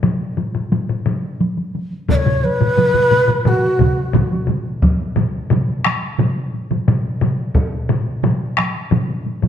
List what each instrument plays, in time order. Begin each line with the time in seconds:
0.03 taiko low-mid, taiko high
0.21 taiko high
0.37 taiko low-mid, taiko high
0.55 taiko low-mid, taiko high
0.72 taiko low-mid, taiko high
0.89 taiko low-mid, taiko high
1.06 taiko low-mid, taiko high
1.24 taiko high
1.41 taiko high
1.57 taiko high
1.75 taiko high
1.92 taiko high
2.09 shakuhachi D5, taiko, taiko low-mid, taiko mid, taiko high
2.15 shakuhachi C#5
2.26 taiko low-mid, taiko mid, taiko high
2.44 shakuhachi B4, taiko high
2.61 taiko low-mid, taiko mid, taiko high
2.77 taiko low-mid, taiko mid, taiko high
2.94 taiko low-mid, taiko mid
3.11 taiko low-mid, taiko mid, taiko high
3.28 taiko low-mid, taiko mid, taiko high
3.45 shakuhachi F#4, taiko low-mid, taiko mid, taiko high
3.64 taiko high
3.79 taiko, taiko low-mid, taiko mid, taiko high
3.98 taiko high
4.13 taiko, taiko low-mid, taiko mid, taiko high
4.33 taiko high
4.47 taiko low-mid, taiko mid, taiko high
4.67 taiko high
4.82 taiko, taiko high
5.01 taiko high
5.16 taiko low-mid, taiko mid, taiko high
5.35 taiko high
5.50 taiko low-mid, taiko mid, taiko high
5.69 taiko high
5.84 taiko rim, taiko high
6.03 taiko high
6.19 taiko low-mid, taiko mid, taiko high
6.38 taiko high
6.54 taiko high
6.71 taiko low-mid, taiko mid, taiko high
6.88 taiko low-mid, taiko mid, taiko high
7.05 taiko high
7.21 taiko low-mid, taiko mid, taiko high
7.39 taiko high
7.55 taiko, taiko high
7.73 taiko high
7.89 taiko low-mid, taiko mid
8.07 taiko high
8.24 taiko low-mid, taiko mid, taiko high
8.42 taiko high
8.57 taiko rim, taiko high
8.75 taiko high
8.91 taiko low-mid, taiko mid, taiko high
9.10 taiko high
9.26 taiko high
9.42 taiko low-mid, taiko mid, taiko high